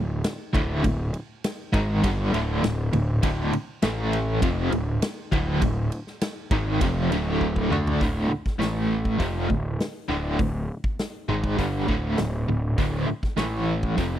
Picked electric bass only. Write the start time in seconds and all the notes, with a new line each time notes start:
Already playing: D1
0.54 D1
0.85 D1
1.74 G#1
2.04 G1
2.33 D1
2.63 D1
2.93 D1
3.23 D1
3.53 muted picked electric bass stroke
3.83 A1
4.42 F1
4.71 D1
5.33 D1
5.62 D1
6.51 G#1
6.81 F1
7.11 D1
7.70 D2
8.01 D1
8.29 muted picked electric bass stroke
8.59 A1
9.20 F1
9.50 D1
10.09 D1
10.39 D1
11.29 G#1
11.59 G1
11.88 D1
12.18 D1
12.48 D1
12.78 D1
13.09 muted picked electric bass stroke
13.38 A1
13.98 F1